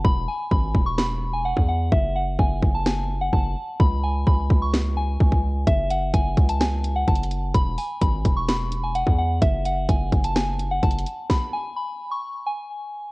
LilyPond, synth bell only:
\new Staff \with { instrumentName = "Synth bell" } { \time 4/4 \key fis \minor \tempo 4 = 128 b''8 gis''8 b''8. cis'''16 b''8. gis''16 fis''8 fis''8 | e''8 fis''8 gis''8. a''16 gis''8. fis''16 a''8 r8 | b''8 gis''8 b''8. cis'''16 r8 gis''4. | e''8 fis''8 gis''8. a''16 gis''8. fis''16 a''8 r8 |
b''8 gis''8 b''8. cis'''16 b''8. gis''16 fis''8 fis''8 | e''8 fis''8 gis''8. a''16 gis''8. fis''16 a''8 r8 | b''8 gis''8 b''8. cis'''16 r8 gis''4. | }